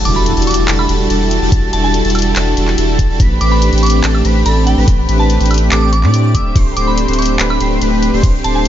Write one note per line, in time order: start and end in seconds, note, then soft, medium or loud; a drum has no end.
0.00 3.17 E3 medium
0.00 3.17 D4 medium
0.00 3.17 F#4 medium
0.00 3.17 G4 medium
0.00 3.17 A4 medium
0.00 impact medium
0.05 0.35 E1 loud
0.05 0.34 G3 medium
0.05 0.34 D4 medium
0.05 0.34 E4 medium
0.05 0.34 F#4 medium
0.05 0.34 A4 loud
0.05 0.34 A5 loud
0.05 0.14 D6 medium
0.05 closed hi-hat medium
0.16 0.31 B5 medium
0.26 closed hi-hat medium
0.37 0.66 E1 medium
0.37 0.66 G3 medium
0.37 0.66 D4 medium
0.37 0.66 E4 medium
0.37 0.66 F#4 medium
0.37 0.66 A4 loud
0.37 0.66 A5 loud
0.37 closed hi-hat soft
0.42 closed hi-hat medium
0.47 0.63 D6 medium
0.47 closed hi-hat medium
0.51 closed hi-hat medium
0.54 closed hi-hat medium
0.68 0.87 E1 loud
0.68 0.87 G3 medium
0.68 0.87 D4 medium
0.68 0.87 E4 medium
0.68 0.87 F#4 medium
0.68 0.87 A4 medium
0.68 0.87 A5 medium
0.68 clap loud
0.68 closed hi-hat medium
0.79 0.94 B5 medium
0.79 high woodblock medium
0.89 1.08 E1 loud
0.89 1.08 G3 medium
0.89 1.08 D4 medium
0.89 1.08 E4 medium
0.89 1.08 F#4 medium
0.89 1.08 A4 medium
0.89 1.08 A5 medium
0.89 closed hi-hat medium
1.10 1.40 E1 loud
1.10 1.39 G3 medium
1.10 1.39 D4 medium
1.10 1.39 E4 medium
1.10 1.39 F#4 medium
1.10 1.39 A4 loud
1.10 1.39 A5 loud
1.10 closed hi-hat medium
1.31 closed hi-hat medium
1.42 1.50 E1 loud
1.42 1.51 G3 loud
1.42 1.51 D4 medium
1.42 1.51 E4 medium
1.42 1.51 F#4 loud
1.42 1.51 A4 loud
1.42 1.51 A5 loud
1.52 1.71 E1 loud
1.52 1.71 G3 medium
1.52 1.71 D4 medium
1.52 1.71 E4 medium
1.52 1.71 F#4 medium
1.52 1.71 A4 loud
1.52 1.71 A5 loud
1.52 kick loud
1.52 closed hi-hat medium
1.73 2.03 E1 loud
1.73 2.02 G3 medium
1.73 2.02 D4 medium
1.73 2.02 E4 medium
1.73 2.02 F#4 medium
1.73 2.02 A4 loud
1.73 2.02 A5 loud
1.73 1.82 A5 loud
1.73 closed hi-hat medium
1.84 2.42 A5 medium
1.94 closed hi-hat medium
2.05 2.34 E1 loud
2.05 2.34 G3 medium
2.05 2.34 D4 medium
2.05 2.34 E4 medium
2.05 2.34 F#4 medium
2.05 2.34 A4 loud
2.05 2.34 A5 loud
2.05 closed hi-hat soft
2.10 closed hi-hat medium
2.15 closed hi-hat medium
2.15 high woodblock medium
2.19 closed hi-hat medium
2.22 closed hi-hat medium
2.36 2.55 E1 loud
2.36 2.55 G3 medium
2.36 2.55 D4 medium
2.36 2.55 E4 medium
2.36 2.55 F#4 medium
2.36 2.55 A4 medium
2.36 2.55 A5 medium
2.36 clap loud
2.36 closed hi-hat medium
2.57 2.76 E1 loud
2.57 2.76 G3 medium
2.57 2.76 D4 medium
2.57 2.76 E4 medium
2.57 2.76 F#4 medium
2.57 2.76 A4 medium
2.57 2.76 A5 medium
2.57 closed hi-hat medium
2.68 clap soft
2.78 3.08 E1 loud
2.78 3.07 G3 medium
2.78 3.07 D4 medium
2.78 3.07 E4 medium
2.78 3.07 F#4 medium
2.78 3.07 A4 loud
2.78 3.07 A5 medium
2.78 closed hi-hat medium
2.99 kick medium
2.99 closed hi-hat medium
3.10 3.21 E1 loud
3.10 3.18 G3 loud
3.10 3.18 D4 medium
3.10 3.18 E4 loud
3.10 3.18 F#4 loud
3.10 3.18 A4 loud
3.10 3.18 A5 loud
3.20 3.39 A1 loud
3.20 6.31 A3 medium
3.20 3.38 A3 loud
3.20 6.31 C4 medium
3.20 3.38 C4 medium
3.20 3.38 D4 medium
3.20 6.31 G4 medium
3.20 3.38 G4 medium
3.20 3.38 B4 loud
3.20 3.38 B5 loud
3.20 kick loud
3.20 closed hi-hat medium
3.41 3.71 A1 loud
3.41 3.70 A3 medium
3.41 3.70 C4 medium
3.41 3.70 D4 medium
3.41 3.70 G4 medium
3.41 3.70 B4 loud
3.41 3.70 B5 loud
3.41 3.50 D6 loud
3.41 closed hi-hat medium
3.52 3.67 B5 medium
3.62 closed hi-hat medium
3.73 4.02 A1 loud
3.73 4.01 A3 medium
3.73 4.01 C4 medium
3.73 4.01 D4 medium
3.73 4.01 G4 medium
3.73 4.01 B4 medium
3.73 4.01 B5 loud
3.73 closed hi-hat soft
3.78 closed hi-hat medium
3.83 3.99 D6 loud
3.83 closed hi-hat medium
3.86 closed hi-hat medium
3.90 closed hi-hat medium
4.04 4.23 A1 loud
4.04 4.22 A3 medium
4.04 4.22 C4 medium
4.04 4.22 D4 medium
4.04 4.22 G4 medium
4.04 4.22 A4 medium
4.04 4.22 A5 medium
4.04 clap loud
4.04 closed hi-hat medium
4.15 high woodblock medium
4.25 4.44 A1 loud
4.25 4.43 A3 medium
4.25 4.43 C4 medium
4.25 4.43 D4 medium
4.25 4.43 G4 medium
4.25 4.43 B4 medium
4.25 4.43 B5 medium
4.25 closed hi-hat medium
4.46 4.75 A1 loud
4.46 4.75 A3 medium
4.46 4.75 C4 medium
4.46 4.75 D4 medium
4.46 4.75 G4 medium
4.46 4.75 A4 loud
4.46 4.75 A5 medium
4.46 4.65 B5 medium
4.46 closed hi-hat medium
4.67 4.82 G5 medium
4.67 closed hi-hat medium
4.78 4.86 A1 loud
4.78 4.86 A3 loud
4.78 4.86 C4 loud
4.78 4.86 D4 loud
4.78 4.86 G4 medium
4.78 4.86 B4 loud
4.78 4.86 B5 loud
4.88 5.07 A1 loud
4.88 5.06 A3 medium
4.88 5.06 C4 medium
4.88 5.06 D4 medium
4.88 5.06 G4 medium
4.88 5.06 B4 loud
4.88 5.06 B5 loud
4.88 kick loud
4.88 closed hi-hat medium
5.09 5.38 A1 loud
5.09 5.38 A3 loud
5.09 5.38 C4 medium
5.09 5.38 D4 medium
5.09 5.38 G4 medium
5.09 5.38 B4 loud
5.09 5.38 B5 loud
5.09 closed hi-hat medium
5.19 5.35 A5 medium
5.30 closed hi-hat medium
5.40 5.70 A1 loud
5.40 5.69 A3 medium
5.40 5.69 C4 medium
5.40 5.69 D4 medium
5.40 5.69 G4 medium
5.40 5.69 B4 medium
5.40 5.69 B5 loud
5.40 closed hi-hat soft
5.46 closed hi-hat medium
5.51 closed hi-hat soft
5.51 high woodblock medium
5.54 closed hi-hat medium
5.58 closed hi-hat medium
5.72 6.05 A1 loud
5.72 5.90 A3 medium
5.72 5.90 C4 medium
5.72 5.90 D4 medium
5.72 5.90 G4 medium
5.72 5.90 A4 medium
5.72 5.90 A5 medium
5.72 5.79 D6 medium
5.72 clap loud
5.72 closed hi-hat medium
5.82 5.89 D6 medium
5.93 6.08 D6 loud
5.93 closed hi-hat medium
6.03 6.36 A2 loud
6.03 6.32 A3 medium
6.03 6.32 C4 medium
6.03 6.32 D4 medium
6.03 6.32 G4 medium
6.03 6.32 D5 medium
6.03 6.32 D6 medium
6.03 clap soft
6.14 closed hi-hat medium
6.35 6.54 D1 loud
6.35 8.68 D3 medium
6.35 6.53 A3 medium
6.35 8.68 C4 medium
6.35 6.53 C4 medium
6.35 8.68 G4 medium
6.35 6.53 E5 medium
6.35 6.75 D6 medium
6.35 6.53 E6 medium
6.35 kick medium
6.35 closed hi-hat medium
6.56 6.75 D1 loud
6.56 6.74 A3 medium
6.56 6.74 C4 medium
6.56 6.74 D4 medium
6.56 6.74 G4 medium
6.56 6.74 C5 loud
6.56 6.74 C6 loud
6.56 kick loud
6.56 closed hi-hat medium
6.56 crash medium
6.77 7.06 D1 loud
6.77 7.06 A3 medium
6.77 7.06 C4 medium
6.77 7.06 D4 medium
6.77 7.06 G4 medium
6.77 7.06 C5 loud
6.77 7.06 C6 loud
6.77 6.85 D6 loud
6.77 closed hi-hat medium
6.87 7.03 B5 medium
6.98 closed hi-hat medium
7.08 7.37 D1 loud
7.08 7.37 A3 medium
7.08 7.37 C4 medium
7.08 7.37 D4 medium
7.08 7.37 G4 medium
7.08 7.37 C5 loud
7.08 7.37 C6 loud
7.08 closed hi-hat soft
7.13 closed hi-hat medium
7.19 7.34 D6 loud
7.19 closed hi-hat soft
7.22 closed hi-hat medium
7.25 closed hi-hat medium
7.39 7.58 D1 loud
7.39 7.58 A3 medium
7.39 7.58 C4 medium
7.39 7.58 D4 medium
7.39 7.58 G4 medium
7.39 7.58 B4 medium
7.39 7.58 B5 loud
7.39 clap loud
7.39 closed hi-hat medium
7.50 7.66 B5 loud
7.50 high woodblock medium
7.60 7.79 D1 loud
7.60 7.79 A3 medium
7.60 7.79 C4 medium
7.60 7.79 D4 medium
7.60 7.79 G4 medium
7.60 7.79 C5 medium
7.60 7.79 C6 medium
7.60 closed hi-hat medium
7.81 8.11 D1 loud
7.81 8.11 A3 medium
7.81 8.11 C4 medium
7.81 8.11 D4 medium
7.81 8.11 G4 medium
7.81 8.11 B4 loud
7.81 8.11 B5 loud
7.81 closed hi-hat medium
8.02 closed hi-hat medium
8.13 8.21 D1 loud
8.13 8.22 A3 loud
8.13 8.22 C4 medium
8.13 8.22 D4 loud
8.13 8.22 G4 medium
8.13 8.22 C5 loud
8.13 8.22 C6 loud
8.23 8.42 D1 loud
8.23 8.42 A3 medium
8.23 8.42 C4 medium
8.23 8.42 D4 medium
8.23 8.42 G4 medium
8.23 8.42 C5 loud
8.23 8.42 C6 loud
8.23 kick loud
8.23 closed hi-hat medium
8.23 crash medium
8.44 8.68 D1 loud
8.44 8.68 A3 medium
8.44 8.68 C4 medium
8.44 8.68 D4 medium
8.44 8.68 G4 medium
8.44 8.68 C5 loud
8.44 8.53 A5 medium
8.44 8.68 C6 loud
8.44 closed hi-hat medium
8.55 8.68 A5 medium